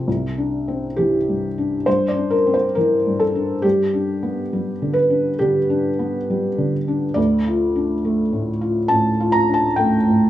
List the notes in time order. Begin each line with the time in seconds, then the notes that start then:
0.08 C2
0.38 D4
0.68 C4
0.96 E3 G4
1.29 G2
1.58 D4
1.86 G2 C5
2.08 D5
2.17 D4
2.30 A#4
2.46 C4
2.54 C5
2.75 E3 A#4
3.07 G2
3.19 A4
3.35 D4
3.62 G2 G4
3.94 D4
4.23 B3
4.53 G3
4.82 D3
4.93 B4
5.10 D4
5.39 D3 G4
5.70 D4
5.99 B3
6.30 G3
6.58 D3
6.88 D4
7.14 D2 D5
7.46 F4
7.75 D4
8.05 A3
8.33 A2
8.61 F4
8.88 A2 A5
9.20 F4
9.32 A#5
9.48 D4
9.54 A5
9.76 A3 G5
10.07 A2